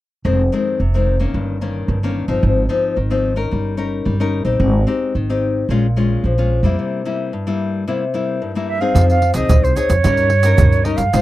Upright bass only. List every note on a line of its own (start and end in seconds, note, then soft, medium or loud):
0.25 0.48 F1 loud
0.80 1.26 F1 medium
1.34 1.80 G1 medium
1.88 2.23 G1 medium
2.28 2.40 G1 medium
2.43 2.66 G#1 medium
2.97 3.43 G#1 medium
3.53 3.98 G1 medium
4.06 4.41 G1 medium
4.45 4.57 A#1 medium
4.60 4.83 G#1 loud
5.15 5.61 G#1 medium
5.69 6.15 A#1 medium
6.24 6.58 A#1 medium
6.63 6.75 F2 medium
8.95 9.30 F2 loud
9.35 9.47 C2 medium
9.50 9.73 C2 medium
9.90 10.02 F2 medium
10.05 10.51 G2 medium
10.60 10.94 G2 medium
10.98 11.10 G2 medium
11.14 11.22 G#2 medium